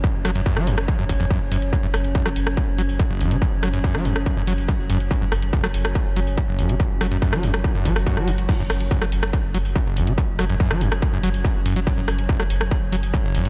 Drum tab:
CC |----------------|----------------|----------------|----------------|
HH |x-oxx-oxx-oox-ox|x-oxx-oxx-oox-ox|x-oxx-oxx-oox-ox|x-oxx-oxx-oox-ox|
SD |--r--r-r--------|--r--r-r--------|--r--r-r--------|--r--r-r--------|
BD |o---o---o-o-o---|o---o---o---o---|o---o---o---o---|o---o---o---o---|

CC |----------------|x---------------|----------------|----------------|
HH |x-oxx-oxx-oox-ox|x-oxx-oxx-oox-ox|x-oxx-oxx-oox-ox|x-oxx-oxx-oox-ox|
SD |--r--r-r---r-r--|--r--r-r--------|--r--r-r--------|--r--r-r--------|
BD |o---o---o-o-o---|o---o---o---o---|o---o---o---o---|o---o---o---o---|